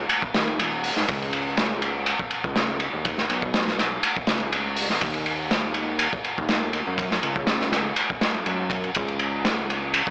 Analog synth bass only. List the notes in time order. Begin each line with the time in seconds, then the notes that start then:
0.35 D#2
0.59 D#1
0.97 G#2
1.09 C#2
2.44 C#2
2.93 D#2
3.29 B1
4.28 C#2
4.90 G#1
5.02 D#2
6.38 D#2
6.87 F#2
7.23 C#2
8.34 F#2
8.46 F#2
8.97 C#2